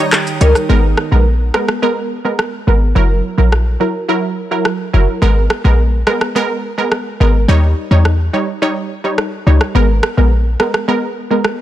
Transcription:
0.00 1.25 D#3 medium
0.00 0.37 G3 medium
0.00 0.38 D#4 medium
0.00 0.40 D#4 medium
0.00 0.11 G4 medium
0.00 0.38 C#5 medium
0.00 0.67 C#5 medium
0.00 0.75 C#5 medium
0.00 0.67 G5 medium
0.00 0.67 A#5 medium
0.00 0.67 D#6 medium
0.12 0.75 G4 medium
0.12 cross-stick loud
0.12 clap medium
0.12 shaker medium
0.27 shaker soft
0.41 0.54 C#2 medium
0.41 0.67 G3 medium
0.41 1.25 D#4 medium
0.41 0.67 D#4 medium
0.41 0.53 A#4 medium
0.41 0.67 C#5 medium
0.41 closed hi-hat medium
0.41 shaker soft
0.55 cross-stick medium
0.55 shaker medium
0.69 0.95 G#1 loud
0.69 1.08 G#3 medium
0.69 1.08 B3 medium
0.69 1.08 A#4 loud
0.97 cross-stick medium
1.12 1.50 A#1 medium
1.12 1.24 G#3 medium
1.12 1.24 B3 medium
1.12 1.24 A#4 medium
1.54 1.67 G#3 medium
1.54 1.67 B3 medium
1.54 1.67 A#4 medium
1.54 cross-stick loud
1.68 cross-stick medium
1.82 1.95 G#3 medium
1.82 1.95 B3 medium
1.82 1.95 A#4 loud
2.25 2.64 G#3 medium
2.25 2.64 B3 medium
2.25 2.64 A#4 medium
2.39 cross-stick medium
2.67 2.93 G#1 medium
2.67 2.93 G#3 medium
2.67 2.93 B3 medium
2.67 2.94 A#4 medium
2.95 3.21 F#1 loud
2.95 3.35 F#3 medium
2.95 3.35 E4 medium
2.95 3.35 A#4 loud
3.38 3.77 A#1 medium
3.38 3.50 F#3 medium
3.38 3.50 E4 medium
3.38 3.51 A#4 medium
3.52 cross-stick medium
3.80 3.93 F#3 medium
3.80 3.93 E4 medium
3.80 3.93 A#4 medium
4.08 4.21 F#3 medium
4.08 4.21 E4 medium
4.08 4.21 A#4 loud
4.51 4.90 F#3 medium
4.51 4.90 E4 medium
4.51 4.91 A#4 medium
4.65 cross-stick medium
4.93 5.07 F#1 medium
4.93 5.20 F#3 medium
4.93 5.20 E4 medium
4.93 5.20 A#4 medium
5.22 5.48 G#1 loud
5.22 5.61 G#3 medium
5.22 5.61 B3 medium
5.22 5.61 A#4 loud
5.50 cross-stick loud
5.64 6.03 A#1 medium
5.64 5.77 G#3 medium
5.64 5.77 B3 medium
5.64 5.77 A#4 medium
6.07 6.19 G#3 medium
6.07 6.20 B3 medium
6.07 6.20 A#4 medium
6.07 cross-stick medium
6.21 cross-stick medium
6.35 6.48 G#3 medium
6.35 6.48 B3 medium
6.35 6.48 A#4 loud
6.78 7.17 G#3 medium
6.78 7.17 B3 medium
6.78 7.17 A#4 medium
6.92 cross-stick medium
7.20 7.46 G#1 medium
7.20 7.46 G#3 medium
7.20 7.46 B3 medium
7.20 7.47 A#4 medium
7.48 7.74 D#2 loud
7.48 7.88 G3 medium
7.48 7.88 D#4 medium
7.48 7.88 C#5 loud
7.91 8.29 E2 medium
7.91 8.03 G3 medium
7.91 8.03 D#4 medium
7.91 8.04 C#5 medium
8.05 cross-stick medium
8.33 8.46 G3 medium
8.33 8.46 D#4 medium
8.33 8.46 C#5 medium
8.62 8.74 G3 medium
8.62 8.74 D#4 medium
8.62 8.74 C#5 loud
9.04 9.43 G3 medium
9.04 9.43 D#4 medium
9.04 9.43 C#5 medium
9.18 cross-stick medium
9.47 9.59 C#2 medium
9.47 9.73 G3 medium
9.47 9.73 D#4 medium
9.47 9.73 C#5 medium
9.61 cross-stick medium
9.75 10.01 G#1 loud
9.75 10.14 G#3 medium
9.75 10.14 B3 medium
9.75 10.14 A#4 loud
10.03 cross-stick loud
10.17 10.56 A#1 medium
10.17 10.30 G#3 medium
10.17 10.30 B3 medium
10.17 10.30 A#4 medium
10.60 10.72 G#3 medium
10.60 10.72 B3 medium
10.60 10.72 A#4 medium
10.60 cross-stick loud
10.74 cross-stick medium
10.88 11.00 G#3 medium
10.88 11.01 B3 medium
10.88 11.01 A#4 loud
11.30 11.43 G#3 medium
11.30 11.43 B3 medium
11.30 11.43 A#4 medium
11.44 cross-stick medium

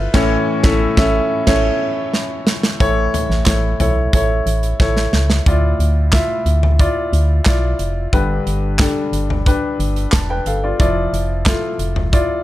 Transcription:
0.00 0.15 E4 medium
0.00 0.16 F4 medium
0.00 0.15 A4 medium
0.00 0.15 B4 loud
0.00 0.15 C5 medium
0.00 0.16 D5 medium
0.14 0.37 A1 loud
0.14 0.37 A2 loud
0.14 0.37 E3 medium
0.14 0.37 C#4 loud
0.14 0.37 E4 medium
0.14 0.37 A4 medium
0.14 0.37 C#5 medium
0.14 kick loud
0.14 snare medium
0.14 crash medium
0.64 0.86 A1 loud
0.64 0.87 C#4 medium
0.64 0.87 E4 loud
0.64 0.87 A4 loud
0.64 0.87 E5 loud
0.64 kick loud
0.64 snare loud
0.97 1.20 A1 loud
0.97 1.20 C#4 loud
0.97 1.20 E4 loud
0.97 1.20 A4 loud
0.97 1.20 E5 medium
0.97 kick loud
0.97 snare loud
1.47 1.70 A1 medium
1.47 1.70 C#4 medium
1.47 1.70 E4 medium
1.47 1.70 A4 medium
1.47 1.70 C#5 medium
1.47 kick medium
1.47 snare medium
1.47 crash medium
2.14 snare medium
2.47 snare loud
2.63 snare medium
2.80 3.08 A1 loud
2.80 3.76 A2 medium
2.80 3.76 E3 medium
2.80 3.32 E4 medium
2.80 3.32 A4 medium
2.80 3.32 C#5 loud
2.80 kick medium
2.80 closed hi-hat medium
3.14 closed hi-hat medium
3.14 floor tom medium
3.30 3.43 A1 loud
3.30 snare soft
3.46 3.74 A1 loud
3.46 3.73 E4 medium
3.46 3.73 A4 medium
3.46 3.73 C#5 medium
3.46 kick loud
3.46 snare loud
3.46 clap medium
3.46 closed hi-hat medium
3.80 4.07 B1 medium
3.80 4.06 E4 medium
3.80 4.06 A4 medium
3.80 4.06 C#5 medium
3.80 closed hi-hat medium
3.80 floor tom medium
4.13 4.41 A1 loud
4.13 4.65 E4 medium
4.13 4.65 A4 medium
4.13 4.65 C#5 medium
4.13 kick medium
4.13 closed hi-hat medium
4.46 4.74 A1 loud
4.46 closed hi-hat medium
4.63 closed hi-hat soft
4.80 5.07 A1 medium
4.80 5.32 E4 medium
4.80 5.32 A4 medium
4.80 5.32 C#5 medium
4.80 kick loud
4.80 snare soft
4.97 snare medium
5.13 5.41 C#2 medium
5.13 snare medium
5.30 snare medium
5.46 5.74 D2 medium
5.46 6.43 A2 medium
5.46 5.98 E4 medium
5.46 5.98 F4 medium
5.46 5.98 D5 medium
5.46 kick medium
5.46 closed hi-hat medium
5.79 6.21 D2 medium
5.79 closed hi-hat medium
6.13 6.65 E4 medium
6.13 6.65 F4 medium
6.13 6.65 E5 medium
6.13 kick loud
6.13 snare loud
6.13 clap medium
6.13 closed hi-hat medium
6.46 6.87 D2 medium
6.46 closed hi-hat medium
6.63 floor tom medium
6.79 7.31 E4 medium
6.79 7.31 F4 medium
6.79 7.31 D5 medium
6.79 kick medium
6.79 closed hi-hat medium
7.13 7.40 D2 loud
7.13 closed hi-hat medium
7.45 7.74 B1 loud
7.45 7.98 E4 medium
7.45 7.98 F4 medium
7.45 7.98 D5 medium
7.45 kick loud
7.45 snare medium
7.45 clap medium
7.45 closed hi-hat medium
7.79 8.07 F1 medium
7.79 closed hi-hat medium
8.13 8.40 G1 medium
8.13 9.09 G2 medium
8.13 9.09 D3 medium
8.13 8.64 D4 medium
8.13 8.64 G4 medium
8.13 8.65 B4 medium
8.13 kick medium
8.13 closed hi-hat medium
8.47 8.88 G1 medium
8.47 closed hi-hat medium
8.79 9.31 D4 medium
8.79 9.31 G4 medium
8.79 9.31 A4 medium
8.79 kick loud
8.79 snare loud
8.79 clap medium
8.79 closed hi-hat loud
9.13 9.54 G1 medium
9.13 closed hi-hat medium
9.30 floor tom medium
9.46 9.98 D4 medium
9.46 9.80 G4 medium
9.46 9.80 B4 medium
9.46 kick medium
9.46 closed hi-hat medium
9.79 10.07 G1 loud
9.79 closed hi-hat medium
9.96 closed hi-hat soft
10.12 10.40 E1 loud
10.12 10.29 A5 medium
10.12 kick loud
10.12 snare loud
10.12 clap medium
10.12 closed hi-hat medium
10.30 10.46 B4 medium
10.30 10.46 G5 medium
10.46 10.74 G1 medium
10.46 10.63 A4 medium
10.46 10.62 F5 medium
10.46 closed hi-hat medium
10.64 10.79 F4 medium
10.64 10.79 D5 medium
10.80 11.07 F1 medium
10.80 11.76 F3 medium
10.80 11.31 E4 medium
10.80 11.31 F4 medium
10.80 11.31 D5 medium
10.80 kick medium
10.80 closed hi-hat medium
11.13 11.54 F1 loud
11.13 closed hi-hat medium
11.46 11.97 E4 medium
11.46 11.97 F4 medium
11.46 11.97 A4 medium
11.46 kick loud
11.46 snare loud
11.46 clap medium
11.46 closed hi-hat medium
11.79 12.20 F1 medium
11.79 closed hi-hat medium
11.96 floor tom medium
12.12 12.43 E4 medium
12.12 12.43 F4 medium
12.12 12.43 D5 medium
12.12 kick medium
12.12 closed hi-hat medium

